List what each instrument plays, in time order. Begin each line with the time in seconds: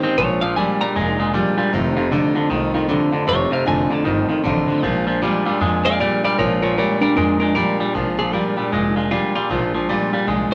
0.02 clean electric guitar D#3 C4, steel-string acoustic guitar A#3 C#4 G4, muted upright bass stroke
0.17 upright bass A#1, steel-string acoustic guitar A#2 F3 G#3 D4 F4, clean electric guitar A#2 F3 C#5
0.41 clean electric guitar A#2 F3 F5, steel-string acoustic guitar G#3 D4 F4
0.56 steel-string acoustic guitar A#2 F3 G#3 D4 F4, clean electric guitar A#2 G3 G#5
0.80 clean electric guitar A#2 G3 A#5, steel-string acoustic guitar G#3 D4 F4, muted upright bass stroke
0.95 upright bass F1, clean electric guitar A#2 G#3, steel-string acoustic guitar F3 G#3 D4 F4
1.18 clean electric guitar A#2 G#3, steel-string acoustic guitar G#3 D4 F4
1.34 steel-string acoustic guitar A#2 F3 G#3 D4 F4, clean electric guitar A#2 G3
1.57 clean electric guitar A#2 G3, steel-string acoustic guitar D4 F4, muted upright bass stroke
1.61 steel-string acoustic guitar G#3
1.73 upright bass F1, steel-string acoustic guitar F2 C3 D#3 A3 D#4 F4, clean electric guitar F2 C3
1.96 clean electric guitar F2 C3, steel-string acoustic guitar D#3 A3 D#4 F4
2.11 clean electric guitar F2 D3, steel-string acoustic guitar F2 C3 D#3 A3 D#4 F4
2.35 clean electric guitar F2 D3, steel-string acoustic guitar D#3 A3 D#4 F4, muted upright bass stroke
2.49 upright bass C2, clean electric guitar F2 D#3, steel-string acoustic guitar D#3 A3 D#4 F4
2.74 clean electric guitar F2 D#3, steel-string acoustic guitar D#3 A3 D#4 F4
2.88 steel-string acoustic guitar F2 C3 D#3 A3 D#4 F4, clean electric guitar F2 D3
3.11 clean electric guitar F2 D3, steel-string acoustic guitar D#3 A3 D#4 F4, muted upright bass stroke
3.27 upright bass F1, steel-string acoustic guitar F2 C3 D#3 A3 D#4 F4, clean electric guitar F2 C3 C#5
3.51 clean electric guitar F2 C3 F5, steel-string acoustic guitar D#3 A3 D#4 F4, muted upright bass stroke
3.65 upright bass F1, steel-string acoustic guitar F2 C3 D#3 A3 D#4 F4, clean electric guitar F2 D3 G#5
3.89 clean electric guitar F2 D3 A5, steel-string acoustic guitar D#3 A3 D#4 F4, muted upright bass stroke
4.04 upright bass G1, clean electric guitar F2 D#3, steel-string acoustic guitar D#3 A3 D#4 F4
4.29 clean electric guitar F2 D#3, steel-string acoustic guitar D#3 A3 D#4 F4, muted upright bass stroke
4.43 upright bass A1, steel-string acoustic guitar F2 C3 D#3 A3 D#4 F4, clean electric guitar F2 D3
4.67 clean electric guitar F2 D3, steel-string acoustic guitar D#3 A3 D#4 F4, muted upright bass stroke
4.82 upright bass A#1, clean electric guitar A#2 F3, steel-string acoustic guitar A#2 F3 G#3 D4 F4
5.07 clean electric guitar A#2 F3, steel-string acoustic guitar G#3 D4 F4
5.21 steel-string acoustic guitar A#2 F3 G#3 D4 F4, clean electric guitar A#2 G3
5.45 clean electric guitar A#2 G3, steel-string acoustic guitar G#3 D4 F4, muted upright bass stroke
5.60 upright bass F2, clean electric guitar A#2 G#3, steel-string acoustic guitar F3 G#3 D4 F4
5.84 clean electric guitar A#2 G#3 D5 F5, steel-string acoustic guitar G#3 D4 F4
5.99 steel-string acoustic guitar A#2 F3 G#3 D4 F4, clean electric guitar A#2 G3 D5 F5
6.23 clean electric guitar A#2 G3 D5 F5, steel-string acoustic guitar G#3 D4 F4, muted upright bass stroke
6.38 upright bass A#1, steel-string acoustic guitar A#2 F3 G#3 D4 F4, clean electric guitar A#2 F3 A#4 C#5
6.62 clean electric guitar A#2 F3 A#4 C#5, steel-string acoustic guitar G#3 D4 F4
6.78 clean electric guitar A#2 G3 A#4 C#5, steel-string acoustic guitar A#2 F3 G#3 D4 F4
7.01 clean electric guitar A#2 G3 D4 A#4, steel-string acoustic guitar G#3 D4 F4, muted upright bass stroke
7.15 upright bass F2, clean electric guitar A#2 G#3 D4 A#4, steel-string acoustic guitar F3 G#3 D4 F4
7.39 clean electric guitar A#2 G#3 D4 A#4, steel-string acoustic guitar G#3 D4 F4
7.55 steel-string acoustic guitar A#2 F3 G#3 D4 F4, clean electric guitar A#2 G3 A#4
7.79 clean electric guitar A#2 G3, steel-string acoustic guitar G#3 D4 F4, muted upright bass stroke
7.94 upright bass A#1, steel-string acoustic guitar A#2 F3 G#3 D4 F4, clean electric guitar A#2 F3
8.18 clean electric guitar A#2 F3 G#4, steel-string acoustic guitar G#3 D4 F4
8.32 steel-string acoustic guitar A#2 F3 G#3 D4 F4, clean electric guitar A#2 G3 A#4
8.56 clean electric guitar A#2 G3, steel-string acoustic guitar G#3 D4 F4, muted upright bass stroke
8.71 upright bass F1, clean electric guitar A#2 G#3, steel-string acoustic guitar F3 G#3 D4 F4
8.96 clean electric guitar A#2 G#3, steel-string acoustic guitar G#3 D4 F4
9.11 steel-string acoustic guitar A#2 F3 G#3 D4 F4, clean electric guitar A#2 G3 F4
9.34 clean electric guitar A#2 G3 F4, steel-string acoustic guitar G#3 D4 F4, muted upright bass stroke
9.49 upright bass A#1, steel-string acoustic guitar A#2 F3 G#3 D4 F4, clean electric guitar A#2 F3
9.74 clean electric guitar A#2 F3, steel-string acoustic guitar G#3 D4 F4
9.89 steel-string acoustic guitar A#2 F3 G#3 D4 F4, clean electric guitar A#2 G3
10.13 clean electric guitar A#2 G3, steel-string acoustic guitar G#3 D4 F4, muted upright bass stroke
10.27 upright bass C2, clean electric guitar A#2 G#3, steel-string acoustic guitar F3 G#3 D4 F4
10.51 steel-string acoustic guitar F4